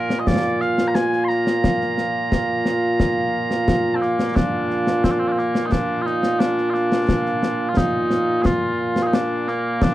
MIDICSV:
0, 0, Header, 1, 3, 480
1, 0, Start_track
1, 0, Key_signature, -2, "major"
1, 0, Tempo, 681818
1, 1150, Time_signature, 4, 2, 24, 8
1, 7001, End_track
2, 0, Start_track
2, 0, Title_t, "Bagpipes"
2, 0, Program_c, 0, 109
2, 0, Note_on_c, 0, 46, 89
2, 0, Note_on_c, 0, 58, 89
2, 0, Note_on_c, 0, 65, 89
2, 0, Note_on_c, 0, 70, 94
2, 135, Note_off_c, 0, 70, 0
2, 135, Note_on_c, 0, 75, 72
2, 190, Note_off_c, 0, 75, 0
2, 190, Note_on_c, 0, 74, 114
2, 429, Note_off_c, 0, 74, 0
2, 429, Note_on_c, 0, 77, 97
2, 617, Note_off_c, 0, 77, 0
2, 617, Note_on_c, 0, 82, 70
2, 667, Note_off_c, 0, 82, 0
2, 667, Note_on_c, 0, 80, 109
2, 877, Note_off_c, 0, 80, 0
2, 877, Note_on_c, 0, 84, 94
2, 904, Note_off_c, 0, 84, 0
2, 904, Note_on_c, 0, 82, 94
2, 2782, Note_off_c, 0, 82, 0
2, 2782, Note_on_c, 0, 60, 57
2, 2826, Note_off_c, 0, 58, 0
2, 2826, Note_off_c, 0, 60, 0
2, 2826, Note_on_c, 0, 58, 81
2, 3067, Note_off_c, 0, 58, 0
2, 3067, Note_on_c, 0, 62, 97
2, 3547, Note_off_c, 0, 62, 0
2, 3547, Note_on_c, 0, 60, 86
2, 3596, Note_off_c, 0, 60, 0
2, 3596, Note_on_c, 0, 62, 64
2, 3655, Note_off_c, 0, 62, 0
2, 3655, Note_on_c, 0, 60, 90
2, 3714, Note_off_c, 0, 60, 0
2, 3714, Note_on_c, 0, 62, 60
2, 3743, Note_off_c, 0, 62, 0
2, 3743, Note_on_c, 0, 60, 60
2, 3790, Note_off_c, 0, 60, 0
2, 3790, Note_on_c, 0, 58, 75
2, 3982, Note_off_c, 0, 58, 0
2, 3982, Note_on_c, 0, 63, 62
2, 4025, Note_off_c, 0, 63, 0
2, 4025, Note_on_c, 0, 62, 96
2, 4239, Note_off_c, 0, 62, 0
2, 4239, Note_off_c, 0, 65, 0
2, 4239, Note_on_c, 0, 65, 90
2, 4267, Note_off_c, 0, 65, 0
2, 4267, Note_on_c, 0, 63, 90
2, 4501, Note_off_c, 0, 63, 0
2, 4501, Note_on_c, 0, 62, 87
2, 4719, Note_off_c, 0, 62, 0
2, 4719, Note_on_c, 0, 65, 88
2, 4743, Note_off_c, 0, 65, 0
2, 4743, Note_on_c, 0, 62, 88
2, 5415, Note_off_c, 0, 62, 0
2, 5415, Note_on_c, 0, 65, 71
2, 5470, Note_off_c, 0, 65, 0
2, 5470, Note_on_c, 0, 63, 86
2, 5928, Note_off_c, 0, 63, 0
2, 5928, Note_on_c, 0, 68, 105
2, 5954, Note_off_c, 0, 68, 0
2, 5954, Note_on_c, 0, 65, 105
2, 6353, Note_off_c, 0, 65, 0
2, 6353, Note_on_c, 0, 68, 67
2, 6380, Note_off_c, 0, 68, 0
2, 6380, Note_on_c, 0, 63, 67
2, 6436, Note_off_c, 0, 63, 0
2, 6436, Note_on_c, 0, 62, 90
2, 6676, Note_off_c, 0, 62, 0
2, 6676, Note_on_c, 0, 58, 89
2, 6917, Note_off_c, 0, 58, 0
2, 6917, Note_on_c, 0, 62, 102
2, 7001, Note_off_c, 0, 46, 0
2, 7001, Note_off_c, 0, 62, 0
2, 7001, End_track
3, 0, Start_track
3, 0, Title_t, "Drums"
3, 72, Note_on_c, 9, 38, 72
3, 142, Note_off_c, 9, 38, 0
3, 190, Note_on_c, 9, 35, 55
3, 190, Note_on_c, 9, 38, 89
3, 260, Note_off_c, 9, 35, 0
3, 260, Note_off_c, 9, 38, 0
3, 431, Note_on_c, 9, 38, 25
3, 502, Note_off_c, 9, 38, 0
3, 551, Note_on_c, 9, 38, 71
3, 621, Note_off_c, 9, 38, 0
3, 670, Note_on_c, 9, 38, 89
3, 740, Note_off_c, 9, 38, 0
3, 794, Note_on_c, 9, 38, 26
3, 864, Note_off_c, 9, 38, 0
3, 914, Note_on_c, 9, 38, 27
3, 984, Note_off_c, 9, 38, 0
3, 1034, Note_on_c, 9, 38, 73
3, 1104, Note_off_c, 9, 38, 0
3, 1154, Note_on_c, 9, 35, 58
3, 1154, Note_on_c, 9, 38, 89
3, 1225, Note_off_c, 9, 35, 0
3, 1225, Note_off_c, 9, 38, 0
3, 1274, Note_on_c, 9, 38, 26
3, 1344, Note_off_c, 9, 38, 0
3, 1391, Note_on_c, 9, 38, 60
3, 1462, Note_off_c, 9, 38, 0
3, 1633, Note_on_c, 9, 35, 45
3, 1633, Note_on_c, 9, 38, 91
3, 1703, Note_off_c, 9, 35, 0
3, 1703, Note_off_c, 9, 38, 0
3, 1869, Note_on_c, 9, 38, 68
3, 1940, Note_off_c, 9, 38, 0
3, 2110, Note_on_c, 9, 35, 57
3, 2110, Note_on_c, 9, 38, 79
3, 2180, Note_off_c, 9, 35, 0
3, 2180, Note_off_c, 9, 38, 0
3, 2469, Note_on_c, 9, 38, 65
3, 2539, Note_off_c, 9, 38, 0
3, 2590, Note_on_c, 9, 35, 58
3, 2590, Note_on_c, 9, 38, 103
3, 2661, Note_off_c, 9, 35, 0
3, 2661, Note_off_c, 9, 38, 0
3, 2832, Note_on_c, 9, 38, 28
3, 2903, Note_off_c, 9, 38, 0
3, 2952, Note_on_c, 9, 38, 81
3, 3022, Note_off_c, 9, 38, 0
3, 3071, Note_on_c, 9, 35, 62
3, 3071, Note_on_c, 9, 38, 98
3, 3142, Note_off_c, 9, 35, 0
3, 3142, Note_off_c, 9, 38, 0
3, 3311, Note_on_c, 9, 38, 26
3, 3382, Note_off_c, 9, 38, 0
3, 3428, Note_on_c, 9, 38, 70
3, 3499, Note_off_c, 9, 38, 0
3, 3548, Note_on_c, 9, 35, 49
3, 3548, Note_on_c, 9, 38, 89
3, 3618, Note_off_c, 9, 35, 0
3, 3618, Note_off_c, 9, 38, 0
3, 3790, Note_on_c, 9, 38, 27
3, 3861, Note_off_c, 9, 38, 0
3, 3908, Note_on_c, 9, 38, 75
3, 3978, Note_off_c, 9, 38, 0
3, 4029, Note_on_c, 9, 35, 56
3, 4029, Note_on_c, 9, 38, 86
3, 4099, Note_off_c, 9, 35, 0
3, 4099, Note_off_c, 9, 38, 0
3, 4269, Note_on_c, 9, 38, 28
3, 4339, Note_off_c, 9, 38, 0
3, 4387, Note_on_c, 9, 38, 70
3, 4458, Note_off_c, 9, 38, 0
3, 4508, Note_on_c, 9, 38, 100
3, 4579, Note_off_c, 9, 38, 0
3, 4630, Note_on_c, 9, 38, 29
3, 4700, Note_off_c, 9, 38, 0
3, 4749, Note_on_c, 9, 38, 27
3, 4819, Note_off_c, 9, 38, 0
3, 4872, Note_on_c, 9, 38, 83
3, 4942, Note_off_c, 9, 38, 0
3, 4988, Note_on_c, 9, 35, 57
3, 4988, Note_on_c, 9, 38, 100
3, 5059, Note_off_c, 9, 35, 0
3, 5059, Note_off_c, 9, 38, 0
3, 5110, Note_on_c, 9, 38, 28
3, 5180, Note_off_c, 9, 38, 0
3, 5228, Note_on_c, 9, 38, 71
3, 5299, Note_off_c, 9, 38, 0
3, 5469, Note_on_c, 9, 35, 57
3, 5469, Note_on_c, 9, 38, 103
3, 5540, Note_off_c, 9, 35, 0
3, 5540, Note_off_c, 9, 38, 0
3, 5706, Note_on_c, 9, 38, 74
3, 5776, Note_off_c, 9, 38, 0
3, 5948, Note_on_c, 9, 35, 61
3, 5948, Note_on_c, 9, 38, 91
3, 6019, Note_off_c, 9, 35, 0
3, 6019, Note_off_c, 9, 38, 0
3, 6309, Note_on_c, 9, 38, 81
3, 6379, Note_off_c, 9, 38, 0
3, 6430, Note_on_c, 9, 38, 127
3, 6501, Note_off_c, 9, 38, 0
3, 6671, Note_on_c, 9, 38, 31
3, 6741, Note_off_c, 9, 38, 0
3, 6910, Note_on_c, 9, 35, 74
3, 6910, Note_on_c, 9, 38, 111
3, 6981, Note_off_c, 9, 35, 0
3, 6981, Note_off_c, 9, 38, 0
3, 7001, End_track
0, 0, End_of_file